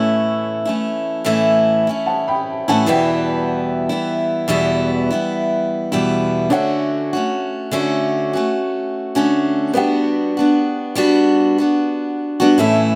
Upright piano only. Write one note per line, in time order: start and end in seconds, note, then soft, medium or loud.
0.00 2.82 C#4 medium
0.00 2.82 A4 medium
0.00 2.83 E5 medium
0.00 2.88 C#6 medium
2.06 2.27 F#5 medium
2.06 2.27 A5 medium
2.28 2.67 G5 medium
2.28 2.66 B5 medium
2.69 3.07 F#5 medium
2.69 3.07 A5 medium
2.85 6.06 E4 medium
2.85 6.07 B4 medium
2.90 6.08 G5 medium
6.49 9.70 D4 medium
6.49 9.71 C#5 medium
6.49 9.72 F#5 medium
9.73 12.54 B3 medium
9.73 12.55 G4 medium
9.73 12.56 F#5 medium
12.57 12.95 C#4 medium
12.57 12.95 A4 medium
12.57 12.95 E5 medium